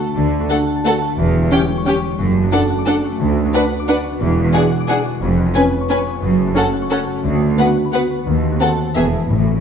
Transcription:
Already playing: harp D3 D4 A4 F#5 A5
0.00 harp F#4
0.08 harp A3
0.15 double bass section D2, harp D3, cello section D3
0.24 harp D4
0.32 harp A3
0.40 harp F#4
0.49 viola section A3, french horn section D4 F#4, harp A4, violin section A4 F#5
0.58 harp F#4
0.67 harp F#5
0.76 harp A5
0.84 viola section A3, french horn section D4 F#4, violin section A4 F#5, harp F#5
0.93 harp A4
1.02 harp F#4
1.10 harp A3
1.17 double bass section E1, cello section E2, harp E3
1.26 harp E4
1.34 harp G3
1.42 harp G4
1.51 viola section C#4, french horn section C#4 G4, violin section G4 G5, harp C#5
1.60 harp G4
1.68 harp G5
1.77 harp C#6
1.86 viola section C#4, french horn section C#4 G4, violin section G4 G5, harp G5
1.95 harp C#5
2.03 harp G4
2.11 harp G3
2.18 double bass section F#1, cello section F#2, harp F#2
2.27 harp F#3
2.35 harp A3
2.43 harp F#4
2.52 viola section D4, french horn section D4 A4, violin section A4 F#5, harp D5
2.61 harp A4
2.70 harp F#5
2.78 harp D6
2.86 viola section D4, french horn section D4 A4, violin section A4 F#5, harp F#5
2.96 harp D5
3.04 harp F#4
3.12 harp A3
3.19 double bass section D2, cello section D2, harp D3
3.28 harp D4
3.36 harp B3
3.45 harp F#4
3.54 viola section D4, french horn section D4 B4, violin section B4 F#5, harp D5
3.62 harp B4
3.71 harp F#5
3.79 harp D6
3.88 viola section D4, french horn section D4 B4, violin section B4 F#5, harp F#5
3.96 harp D5
4.04 harp F#4
4.12 harp B3
4.20 double bass section E1, harp E2, cello section E2
4.28 harp B2
4.36 harp G#3
4.45 harp F#4
4.53 viola section D4, french horn section D4 G#4, violin section G#4 F#5, harp D5
4.62 harp G#4
4.71 harp F#5
4.80 harp D6
4.88 french horn section D4 G#4, viola section D4, violin section G#4 F#5, harp F#5
4.98 harp D5
5.05 harp F#4
5.14 harp G#3
5.21 double bass section F1, cello section F2, harp F2
5.29 harp F3
5.38 harp B3
5.46 harp G#4
5.54 viola section C#4, french horn section C#4 B4, violin section B4 G#5, harp C#5
5.63 harp B4
5.72 harp G#5
5.81 harp C#6
5.89 viola section C#4, french horn section C#4 B4, violin section B4 G#5, harp G#5
5.98 harp C#5
6.07 harp G#4
6.15 harp B3
6.22 double bass section F#1, cello section F#2, harp F#2
6.30 harp C#3
6.38 harp A3
6.47 harp F#4
6.55 french horn section C#4 A4, viola section C#4, violin section A4 F#5, harp C#5
6.64 harp A4
6.73 harp F#5
6.82 harp C#6
6.90 french horn section C#4 A4, viola section C#4, violin section A4 F#5, harp F#5
6.99 harp C#5
7.07 harp F#4
7.16 harp A3
7.24 double bass section D2, cello section D2, harp D3
7.32 harp D4
7.41 harp B3
7.49 harp F#4
7.58 viola section B3, french horn section B3 F#4, harp B4, violin section B4 F#5
7.67 harp F#4
7.76 harp F#5
7.85 harp B5
7.92 french horn section B3 F#4, viola section B3, violin section B4 F#5, harp F#5
8.02 harp B4
8.10 harp F#4
8.18 harp B3
8.26 double bass section D#2, cello section D#2, harp D#3
8.35 harp A3
8.43 harp C4
8.52 harp F#4
8.60 viola section C4, french horn section C4 F#4, harp A4, violin section A4 F#5
8.69 harp C5
8.78 harp F#5
8.87 harp A5
8.95 double bass section E1, cello section E2, harp E3, french horn section B3 G#4, viola section B3, violin section G#4 E5
9.05 harp B3
9.13 harp E4
9.21 harp G#4
9.29 double bass section A1, harp A2, timpani A2, cello section A2
9.38 harp E3
9.47 harp C#4
9.55 harp E4

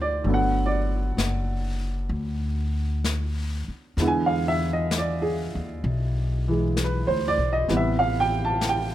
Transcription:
Already playing: upright bass D2, upright piano D#3 F#3 A3 C4 C5
0.02 upright piano D5
0.24 upright bass G1, upright piano D3 F#3 A3, brush sweep
0.29 upright piano B3
0.34 upright piano F#5
0.66 upright piano D5
1.17 upright bass F#1, brush sweep, snare, hi-hat pedal
2.09 upright bass D2, brush sweep
3.04 brush sweep, snare, hi-hat pedal
3.68 muted upright bass stroke
3.97 upright bass E2, upright piano D3 G#3 B3 E4, brush sweep, snare
4.07 upright piano G#5
4.26 upright piano F5
4.48 upright piano E5
4.73 upright piano D#5
4.91 brush sweep, snare, hi-hat pedal
4.98 upright piano D5
5.22 upright piano G#4
5.55 upright bass D#2
5.84 upright bass B1, brush sweep
6.48 upright piano E3 G#3
6.77 brush sweep, snare, hi-hat pedal
6.84 upright piano B4
7.07 upright bass D2, upright piano C5
7.28 upright piano D5
7.38 upright bass B1
7.53 upright piano D#5
7.68 upright bass A1, upright piano C3 E3 G3 B3, brush sweep, snare
7.77 upright piano E5
7.99 upright piano F5
8.20 upright piano G5
8.45 upright piano A5
8.61 brush sweep, snare, hi-hat pedal
8.69 upright piano G5

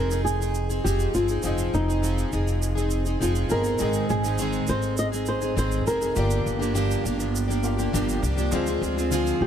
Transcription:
Already playing: upright bass F1, steel-string acoustic guitar F3 C4 D#4, upright piano C4 F4 G#4 D#5, nylon-string guitar A#4
0.10 steel-string acoustic guitar C4 D#4 G#4, shaker
0.25 nylon-string guitar G#4, shaker
0.40 steel-string acoustic guitar C4 D#4 G#4, shaker
0.54 shaker
0.70 steel-string acoustic guitar C4 D#4 G#4, shaker
0.84 upright bass F1, steel-string acoustic guitar F3 C4 D#4 G#4, nylon-string guitar G4, shaker
1.00 shaker
1.14 upright bass G1, steel-string acoustic guitar F3 C4 D#4 G#4, nylon-string guitar F4, shaker
1.28 steel-string acoustic guitar C4 D#4 G#4, shaker
1.42 upright bass F1, steel-string acoustic guitar F3 C4 D#4 G#4, upright piano C4 F4 G#4, shaker
1.47 upright piano D#5
1.58 shaker
1.74 upright bass F1, nylon-string guitar D#4, shaker
1.88 steel-string acoustic guitar C4 D#4 G#4, shaker
2.02 steel-string acoustic guitar F3 C4 D#4 G#4, shaker
2.18 shaker
2.31 upright bass F1, steel-string acoustic guitar F3 C4 D#4 G#4, shaker
2.47 shaker
2.62 shaker
2.75 steel-string acoustic guitar C4 D#4 G#4, shaker
2.90 shaker
3.05 steel-string acoustic guitar C4 D#4 G#4, shaker
3.20 upright bass F1, steel-string acoustic guitar F3 C4 D#4 G#4, nylon-string guitar F4, shaker
3.35 shaker
3.48 upright bass G1, steel-string acoustic guitar F3 C4 D#4 G#4, upright piano C4 F4 G#4 D#5, nylon-string guitar A#4, shaker
3.64 steel-string acoustic guitar C4 D#4 G#4, shaker
3.79 upright bass G#1, steel-string acoustic guitar G#2 D#3 G#3 C4 D#4 G#4, upright piano C4 D#4 G#4, shaker
3.83 upright piano D#5
3.93 shaker
4.10 upright bass G#1, nylon-string guitar G#4, shaker
4.24 steel-string acoustic guitar G#3 C4 D#4 G#4, shaker
4.38 steel-string acoustic guitar G#2 D#3 G#3 C4 D#4 G#4, shaker
4.53 shaker
4.67 upright bass G#1, steel-string acoustic guitar G#3 C4 D#4 G#4, nylon-string guitar C5, shaker
4.82 shaker
4.97 nylon-string guitar D#5, shaker
5.12 steel-string acoustic guitar G#3 C4 D#4 G#4, shaker
5.26 nylon-string guitar C5, shaker
5.41 steel-string acoustic guitar G#3 C4 D#4 G#4, shaker
5.56 upright bass G#1, steel-string acoustic guitar G#2 D#3 G#3 C4 D#4 G#4, nylon-string guitar C5, shaker
5.71 shaker
5.86 upright bass F1, steel-string acoustic guitar G#3 C4 D#4 G#4, nylon-string guitar A#4, shaker
6.00 steel-string acoustic guitar G#3 C4 D#4 G#4, shaker
6.14 upright bass G1, steel-string acoustic guitar G2 D3 F3 A#3 D4 G4, upright piano A#3 F4 G4, shaker
6.18 upright piano D5
6.30 shaker
6.46 upright bass G1, shaker
6.59 steel-string acoustic guitar F3 A#3 D4 G4, shaker
6.74 steel-string acoustic guitar G2 D3 F3 A#3 D4 G4, shaker
6.91 shaker
7.04 upright bass G1, steel-string acoustic guitar F3 A#3 D4 G4, shaker
7.18 steel-string acoustic guitar F3 A#3 D4 G4, shaker
7.36 shaker
7.48 steel-string acoustic guitar F3 A#3 D4 G4, shaker
7.63 upright piano A#3 F4 G4 F5, shaker
7.77 steel-string acoustic guitar F3 A#3 D4 G4, shaker
7.93 upright bass G1, steel-string acoustic guitar G2 D3 F3 A#3 D4 G4, shaker
8.09 shaker
8.22 upright bass C2, steel-string acoustic guitar F3 A#3 D4 G4, shaker
8.36 steel-string acoustic guitar F3 A#3 D4 G4, shaker
8.51 upright bass D2, steel-string acoustic guitar D3 F3 C4 F4 G#4, upright piano G#3 C4 D4 F4 C5, shaker
8.66 steel-string acoustic guitar C4 F4 G#4, shaker
8.81 upright bass D2, steel-string acoustic guitar F3 C4 F4 G#4, shaker
8.96 steel-string acoustic guitar C4 F4 G#4, shaker
9.11 steel-string acoustic guitar D3 F3 C4 F4 G#4, shaker
9.27 shaker
9.41 upright bass C2, nylon-string guitar G4

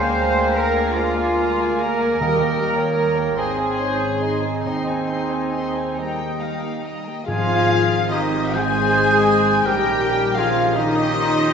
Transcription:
Already playing: double bass section D2, french horn section A#3 G#4, bassoon C4, cello section C5, clarinet F5, flute G#5
0.00 viola section A#3, violin section D5 G#5
0.18 viola section G#3, violin section F5 A#5
0.37 viola section A#3, violin section D5 G#5
0.55 viola section G#3, cello section A#4, violin section F5 A#5
0.76 viola section A#3, violin section D5 G#5
0.95 viola section G#3, bassoon A#3, cello section F4, clarinet F5, violin section F5 A#5, flute G#5
1.17 viola section A#3, violin section D5 G#5
1.38 viola section G#3, violin section F5 A#5
1.60 viola section A#3, violin section D5 G#5
1.80 viola section G#3, cello section A#4, violin section F5 A#5
2.00 viola section A#3, violin section D5 G#5
2.20 double bass section D#2, timpani D#3, viola section G3, bassoon A#3, french horn section G4, violin section D#5 A#5, clarinet D#5, flute G5
2.40 viola section A#3, violin section A#4 G5
2.58 viola section G3, violin section D#5 A#5
2.77 viola section A#3, violin section A#4 G5, clarinet C#5
2.96 viola section G3, violin section D#5 A#5
3.16 viola section A#3, violin section A#4 G5
3.36 double bass section G#1, french horn section C4 G#4, bassoon C4, viola section D#4, cello section G#4, clarinet C5, violin section D#5 C6, flute G#5
3.57 viola section C4, violin section C5 G#5
3.77 bassoon C#4, viola section D#4, violin section D#5 C6
3.99 viola section C4, violin section C5 G#5
4.20 viola section D#4, bassoon D#4, violin section D#5 C6
4.42 viola section C4, violin section C5 G#5
4.63 double bass section D#2, cello section D#4, clarinet C5, violin section D#5 C6, flute G#5
4.67 bassoon C4, viola section D#4
4.87 viola section C4, violin section C5 G#5
5.09 viola section D#4, violin section D#5 C6
5.30 viola section C4, violin section C5 G#5
5.52 viola section D#4, violin section D#5 C6
5.74 viola section C4, violin section C5 G#5
5.96 viola section G3, french horn section A#3 G4, clarinet D#5, violin section G5 A#5, flute G5
6.19 viola section A#3, violin section G5
6.40 viola section G3, violin section F5 A#5
6.63 viola section A#3, violin section G5
6.84 viola section G3, violin section D#5 A#5
7.07 viola section A#3, violin section G5
7.25 double bass section G#1, timpani G#2, trombone section D#3 C4, french horn section F3, cello section F3, violin section F4 F5, viola section F4, trumpet F4, flute G#4
8.11 cello section D#3, french horn section D#3, violin section D#4 D#5, trumpet D#4, viola section D#4, flute G4
8.54 cello section G#3, french horn section G#3, violin section G#4 G#5, trumpet G#4, viola section G#4, flute C5, clarinet C5
9.64 double bass section A#1, cello section G3, french horn section G3, trombone section C#4, violin section G4 G5, viola section G4, trumpet G4, flute A#4, clarinet A#4
10.37 cello section F3, french horn section F3, viola section F4, trumpet F4, violin section F4 F5, flute G#4
10.74 french horn section D#3, cello section D#3, trumpet D#4, violin section D#4 D#5, viola section D#4, flute G4, clarinet G4
11.15 clarinet F4

